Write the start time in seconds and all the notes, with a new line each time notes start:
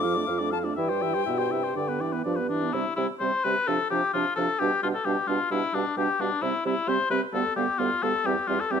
Already playing: F2 D6
0.03 F3 F4 F5
0.15 A3 D4 D5
0.27 F2 F3 F4 F5
0.38 A3 D4 D5
0.51 F3 F4 F5 A5
0.64 A3 D4 D5
0.76 G2 E3 E4 E5 G5
0.89 G3 G4 C5
1.01 E3 E4 E5
1.13 G3 G4 C5
1.25 G2 B2 E4 E5
1.38 G4 C5
1.50 C3 E4 E5
1.63 G4 C5
1.75 G2 D3 D4 D5
1.88 B3 B4
2.00 E3 D4 D5
2.13 B3 B4
2.24 G2 F3 D4 D5
2.36 B3 B4
2.49 E3 D4
2.63 B3
2.73 C3 G3 C4 E4 C5
2.96 C3 G3 C4 E4 C5
3.20 C3 G3 C4 C5
3.44 C3 G3 C4 B4 C5
3.67 C3 F3 D4 A4 F5
3.90 C3 F3 D4 G4 F5
4.13 C3 F3 D4 F4 F5
4.36 C3 F3 D4 A4 F5
4.59 B2 G3 D4 G4 F5
4.82 B2 G3 D4 F4 F5
4.94 A4
5.05 B2 G3 D4 G4 F5
5.27 B2 G3 D4 F4 F5
5.50 B2 G3 D4 E4 F5
5.73 B2 G3 D4 F5
5.96 B2 G3 D4 G4 F5
6.19 B2 G3 D4 F5
6.42 C3 G3 C4 E4 E5
6.65 C3 G3 C4 E4 E5
6.87 C3 G3 C4 C5 E5
7.10 C3 G3 C4 B4 E5
7.33 D2 G3 B3 A4 F5
7.56 D2 G3 B3 G4 F5
7.79 D2 G3 B3 F4 F5
8.02 D2 G3 B3 A4 F5
8.24 E2 G3 C4 G4 E5
8.47 E2 G3 C4 F4 E5
8.60 A4
8.70 E2 G3 C4 G4 E5